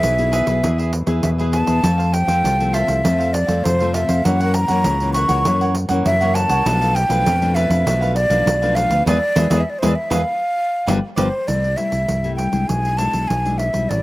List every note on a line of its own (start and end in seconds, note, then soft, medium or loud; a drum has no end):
0.00 0.41 B1 medium
0.00 0.60 B2 medium
0.00 0.12 B3 medium
0.00 0.12 E4 medium
0.00 0.30 E4 medium
0.00 0.13 G#4 medium
0.00 0.31 G#4 soft
0.00 0.31 B4 medium
0.00 0.93 E5 loud
0.00 0.32 E5 medium
0.00 pandeiro medium
0.18 0.59 B3 medium
0.18 0.59 E4 medium
0.18 0.59 G#4 medium
0.18 pandeiro soft
0.32 0.46 E4 medium
0.32 0.46 G#4 medium
0.32 0.46 B4 medium
0.32 0.45 E5 medium
0.32 pandeiro medium
0.46 0.60 B1 medium
0.46 0.62 G#4 soft
0.46 0.61 B4 medium
0.46 0.61 E5 medium
0.46 pandeiro medium
0.62 1.02 E2 medium
0.62 1.21 E3 medium
0.62 0.92 B3 soft
0.62 0.77 E4 soft
0.62 0.92 E4 medium
0.62 0.77 G#4 soft
0.62 0.92 G#4 medium
0.62 0.77 B4 soft
0.62 0.77 E5 soft
0.62 pandeiro medium
0.78 0.92 G#4 medium
0.78 0.92 B4 medium
0.78 0.92 E5 medium
0.78 pandeiro soft
0.92 muted cavaquinho stroke soft
0.92 pandeiro medium
1.06 1.21 E2 medium
1.06 1.33 B3 medium
1.06 1.33 E4 medium
1.06 1.33 G#4 medium
1.06 1.37 G#4 medium
1.06 1.37 B4 medium
1.06 1.36 E5 medium
1.06 pandeiro medium
1.23 1.62 E2 medium
1.23 1.81 B2 medium
1.23 1.30 E5 medium
1.23 pandeiro medium
1.38 1.79 B3 medium
1.38 1.80 E4 medium
1.38 1.52 G#4 medium
1.38 1.80 G#4 medium
1.38 1.52 B4 medium
1.38 1.52 E5 medium
1.38 pandeiro soft
1.52 1.67 E4 soft
1.52 1.67 G#4 soft
1.52 1.66 B4 soft
1.52 1.65 E5 soft
1.52 2.15 A5 medium
1.52 pandeiro medium
1.67 1.81 E2 medium
1.67 1.82 G#4 medium
1.67 1.82 B4 medium
1.67 1.82 E5 medium
1.67 pandeiro medium
1.82 2.22 F2 loud
1.82 2.42 F2 medium
1.82 2.25 F3 medium
1.82 2.25 A3 soft
1.82 2.25 C4 medium
1.82 1.97 F4 soft
1.82 1.97 A4 soft
1.82 1.98 C5 soft
1.82 1.97 F5 medium
1.82 pandeiro medium
1.98 2.12 A4 medium
1.98 2.12 C5 medium
1.98 2.12 F5 medium
1.98 pandeiro soft
2.13 2.75 G5 loud
2.13 muted cavaquinho stroke soft
2.13 pandeiro medium
2.27 2.41 F2 medium
2.27 2.54 F3 medium
2.27 2.55 A3 soft
2.27 2.55 C4 medium
2.27 2.43 A4 medium
2.27 2.43 C5 medium
2.27 2.42 F5 medium
2.27 pandeiro medium
2.44 2.83 C2 medium
2.44 3.02 C3 medium
2.44 2.72 F4 soft
2.44 2.72 A4 soft
2.44 2.73 C5 medium
2.44 2.74 F5 medium
2.44 pandeiro medium
2.60 3.00 F3 medium
2.60 3.00 A3 medium
2.60 3.01 C4 medium
2.60 pandeiro soft
2.73 2.87 F4 medium
2.73 2.88 A4 medium
2.73 2.87 C5 medium
2.73 3.35 E5 medium
2.73 2.86 F5 medium
2.73 pandeiro medium
2.87 3.02 C2 medium
2.87 3.03 A4 medium
2.87 3.03 C5 medium
2.87 3.02 F5 medium
2.87 pandeiro medium
3.03 3.43 F2 medium
3.03 3.63 F2 soft
3.03 3.33 F3 medium
3.03 3.34 A3 medium
3.03 3.34 C4 medium
3.03 3.18 F4 soft
3.03 3.18 A4 soft
3.03 3.18 C5 medium
3.03 3.17 F5 soft
3.03 pandeiro medium
3.18 3.32 A4 medium
3.18 3.33 C5 medium
3.18 3.32 F5 medium
3.18 pandeiro soft
3.33 3.66 D5 medium
3.33 muted cavaquinho stroke soft
3.33 pandeiro medium
3.47 3.62 F2 medium
3.47 3.75 F3 medium
3.47 3.75 A3 medium
3.47 3.75 C4 medium
3.47 3.78 A4 medium
3.47 3.78 C5 medium
3.47 3.77 F5 medium
3.47 pandeiro medium
3.64 4.04 F2 medium
3.64 4.23 C3 medium
3.64 3.95 C5 medium
3.64 pandeiro medium
3.79 4.21 F3 medium
3.79 4.21 A3 medium
3.79 4.22 C4 medium
3.79 3.93 A4 medium
3.79 3.93 C5 medium
3.79 3.93 F5 medium
3.79 pandeiro soft
3.93 4.08 F4 soft
3.93 4.08 A4 soft
3.93 4.08 C5 soft
3.93 4.26 E5 medium
3.93 4.07 F5 medium
3.93 pandeiro medium
4.08 4.22 F2 medium
4.08 4.24 A4 soft
4.08 4.24 C5 medium
4.08 4.23 F5 medium
4.08 pandeiro medium
4.24 4.64 F#2 medium
4.24 4.83 F#2 medium
4.24 4.66 E3 medium
4.24 4.66 A#3 medium
4.24 4.67 C#4 medium
4.24 4.39 E4 soft
4.24 4.39 A#4 medium
4.24 4.40 C#5 soft
4.24 4.56 F#5 medium
4.24 4.39 F#5 medium
4.24 pandeiro medium
4.40 4.53 A#4 soft
4.40 4.54 C#5 medium
4.40 4.54 F#5 medium
4.40 pandeiro soft
4.54 5.13 A#5 loud
4.54 muted cavaquinho stroke soft
4.54 pandeiro medium
4.68 4.83 F#2 medium
4.68 4.96 E3 medium
4.68 4.96 A#3 medium
4.68 4.96 C#4 medium
4.68 4.84 A#4 soft
4.68 4.84 C#5 medium
4.68 4.83 F#5 medium
4.68 pandeiro medium
4.84 5.24 C#2 medium
4.84 5.44 C#3 medium
4.84 5.13 E4 soft
4.84 5.14 A#4 medium
4.84 5.14 C#5 soft
4.84 5.15 F#5 medium
4.84 pandeiro medium
5.00 5.42 E3 medium
5.00 5.42 A#3 medium
5.00 5.42 C#4 medium
5.00 pandeiro soft
5.13 5.29 E4 medium
5.13 5.29 A#4 medium
5.13 5.28 C#5 medium
5.13 5.27 F#5 medium
5.13 5.74 C#6 medium
5.13 pandeiro medium
5.28 5.43 C#2 medium
5.28 5.44 A#4 medium
5.28 5.44 C#5 medium
5.28 5.43 F#5 medium
5.28 pandeiro medium
5.45 6.03 F#2 medium
5.45 5.84 F#2 medium
5.45 5.74 E3 medium
5.45 5.74 A#3 medium
5.45 5.75 C#4 medium
5.45 5.60 E4 soft
5.45 5.60 A#4 soft
5.45 5.60 C#5 medium
5.45 5.60 F#5 soft
5.45 pandeiro medium
5.61 5.74 A#4 medium
5.61 5.74 C#5 medium
5.61 5.74 F#5 medium
5.61 pandeiro soft
5.75 muted cavaquinho stroke soft
5.75 pandeiro medium
5.89 6.03 F#2 medium
5.89 6.16 E3 medium
5.89 6.16 A#3 medium
5.89 6.16 C#4 medium
5.89 6.20 A#4 medium
5.89 6.19 C#5 medium
5.89 6.19 F#5 medium
5.89 pandeiro medium
6.06 6.44 F#2 medium
6.06 6.63 C#3 medium
6.06 6.36 E5 medium
6.06 pandeiro medium
6.20 6.62 E3 medium
6.20 6.62 A#3 medium
6.20 6.62 C#4 medium
6.20 6.34 A#4 medium
6.20 6.35 C#5 medium
6.20 6.35 F#5 medium
6.20 pandeiro soft
6.35 6.49 E4 soft
6.35 6.50 A#4 soft
6.35 6.50 C#5 soft
6.35 6.48 F#5 soft
6.35 6.97 A5 loud
6.35 pandeiro medium
6.49 6.63 C2 medium
6.49 6.65 A#4 medium
6.49 6.65 C#5 medium
6.49 6.64 F#5 medium
6.49 pandeiro medium
6.65 7.04 B1 loud
6.65 7.23 B2 medium
6.65 6.94 F3 medium
6.65 6.94 A3 medium
6.65 6.80 D4 soft
6.65 6.94 D4 medium
6.65 6.80 A4 soft
6.65 6.80 B4 soft
6.65 6.80 F5 soft
6.65 pandeiro medium
6.81 6.94 A4 medium
6.81 6.95 B4 medium
6.81 6.95 F5 medium
6.81 pandeiro soft
6.95 7.56 G5 loud
6.95 muted cavaquinho stroke soft
6.95 pandeiro medium
7.09 7.23 B1 medium
7.09 7.35 F3 medium
7.09 7.36 A3 medium
7.09 7.36 D4 medium
7.09 7.25 A4 medium
7.09 7.25 B4 medium
7.09 7.24 F5 medium
7.09 pandeiro medium
7.26 7.65 F2 medium
7.26 7.84 B2 medium
7.26 7.54 D4 soft
7.26 7.55 A4 soft
7.26 7.55 B4 medium
7.26 7.56 F5 medium
7.26 pandeiro medium
7.42 7.82 F3 medium
7.42 7.82 A3 medium
7.42 7.83 D4 medium
7.42 pandeiro soft
7.55 7.70 D4 medium
7.55 7.70 A4 medium
7.55 7.69 B4 medium
7.55 8.14 E5 medium
7.55 7.68 F5 medium
7.55 pandeiro medium
7.69 7.83 F2 medium
7.69 7.85 A4 medium
7.69 7.85 B4 medium
7.69 7.84 F5 medium
7.69 pandeiro medium
7.86 8.25 B1 medium
7.86 8.44 B2 medium
7.86 8.15 F3 medium
7.86 8.15 A3 medium
7.86 8.00 D4 soft
7.86 8.15 D4 medium
7.86 8.01 A4 soft
7.86 8.01 B4 medium
7.86 8.00 F5 soft
7.86 pandeiro medium
8.01 8.14 A4 medium
8.01 8.15 B4 medium
8.01 8.15 F5 medium
8.01 pandeiro soft
8.15 8.77 D5 loud
8.15 muted cavaquinho stroke soft
8.15 pandeiro medium
8.30 8.44 B1 medium
8.30 8.56 F3 medium
8.30 8.57 A3 medium
8.30 8.57 D4 medium
8.30 8.61 A4 medium
8.30 8.60 B4 medium
8.30 8.60 F5 medium
8.30 pandeiro medium
8.46 8.85 B1 medium
8.46 9.04 B2 medium
8.46 pandeiro medium
8.62 9.03 F3 medium
8.62 9.03 A3 medium
8.62 9.03 D4 medium
8.62 8.75 A4 medium
8.62 8.76 B4 medium
8.62 8.76 F5 medium
8.62 pandeiro soft
8.75 8.90 D4 soft
8.75 8.91 A4 soft
8.75 8.90 B4 soft
8.75 9.06 F5 medium
8.75 8.89 F5 medium
8.75 pandeiro medium
8.90 9.04 D2 medium
8.90 9.06 A4 medium
8.90 9.05 B4 medium
8.90 9.05 F5 medium
8.90 pandeiro medium
9.06 9.18 E2 medium
9.06 9.17 E3 medium
9.06 9.17 G#3 medium
9.06 9.17 B3 medium
9.06 9.17 G#4 medium
9.06 9.17 B4 medium
9.06 9.62 D5 medium
9.06 9.17 E5 medium
9.06 pandeiro loud
9.35 9.48 E2 medium
9.35 9.46 E3 medium
9.35 9.46 G#3 medium
9.35 9.46 B3 medium
9.35 9.46 G#4 medium
9.35 9.46 B4 medium
9.35 9.47 E5 medium
9.35 pandeiro loud
9.50 9.63 E2 medium
9.50 9.61 E3 medium
9.50 9.61 G#3 medium
9.50 9.61 B3 medium
9.50 9.61 G#4 medium
9.50 9.61 B4 medium
9.50 9.61 E5 medium
9.50 pandeiro medium
9.61 9.71 E5 medium
9.70 9.80 D5 medium
9.79 9.92 E3 medium
9.79 9.92 G#3 loud
9.79 9.92 B4 medium
9.79 9.90 C5 medium
9.79 9.92 E5 medium
9.83 9.94 E2 medium
9.83 9.92 B3 medium
9.83 9.92 G#4 medium
9.83 pandeiro medium
9.88 9.97 D5 medium
9.95 10.12 E5 medium
10.10 10.23 E2 medium
10.10 10.21 E3 medium
10.10 10.21 G#3 medium
10.10 10.21 B3 medium
10.10 10.21 G#4 medium
10.10 10.21 B4 medium
10.10 10.21 E5 medium
10.10 10.92 F5 medium
10.10 pandeiro medium
10.86 10.99 G1 medium
10.86 10.98 F3 medium
10.86 10.98 G3 medium
10.86 10.98 B3 medium
10.86 10.97 G4 medium
10.86 10.97 B4 loud
10.86 10.97 D5 medium
10.86 pandeiro medium
11.16 11.29 G1 medium
11.16 11.27 F3 medium
11.16 11.27 G3 medium
11.16 11.27 B3 medium
11.16 11.27 G4 medium
11.16 11.27 B4 medium
11.16 11.49 C5 medium
11.16 11.27 D5 medium
11.16 pandeiro medium
11.47 11.74 C2 medium
11.47 12.06 C3 soft
11.47 11.66 G3 soft
11.47 11.67 A3 soft
11.47 11.67 E4 soft
11.47 11.78 D5 medium
11.47 pandeiro medium
11.64 pandeiro soft
11.77 12.06 G3 soft
11.77 12.06 A3 soft
11.77 12.07 E4 soft
11.77 12.35 E5 medium
11.77 pandeiro medium
11.92 12.06 C2 medium
11.92 pandeiro soft
12.08 12.48 C2 medium
12.08 12.66 G2 soft
12.08 pandeiro medium
12.24 12.49 G3 medium
12.24 12.50 A3 soft
12.24 12.50 E4 medium
12.24 pandeiro soft
12.36 12.69 G5 medium
12.36 pandeiro medium
12.52 12.66 C2 medium
12.52 12.93 G#3 soft
12.52 12.94 D4 soft
12.52 12.94 E4 soft
12.52 pandeiro soft
12.68 13.08 B1 medium
12.68 13.27 B2 soft
12.68 12.99 G#5 medium
12.68 pandeiro medium
12.85 pandeiro soft
12.97 13.27 G#3 soft
12.97 13.27 D4 soft
12.97 13.28 E4 medium
12.97 13.29 A5 medium
12.97 pandeiro medium
13.13 13.27 B1 medium
13.13 pandeiro soft
13.28 13.69 B1 medium
13.28 13.87 B2 soft
13.28 13.60 G#5 medium
13.28 pandeiro medium
13.45 13.70 G#3 soft
13.45 13.71 D4 medium
13.45 13.71 E4 medium
13.45 pandeiro soft
13.58 13.91 E5 medium
13.58 pandeiro medium
13.73 13.88 B1 medium
13.73 14.03 G3 medium
13.73 14.03 C4 soft
13.73 14.03 E4 medium
13.73 pandeiro medium
13.89 14.03 A1 medium
13.89 14.03 A2 soft
13.89 14.03 D5 medium
13.89 pandeiro medium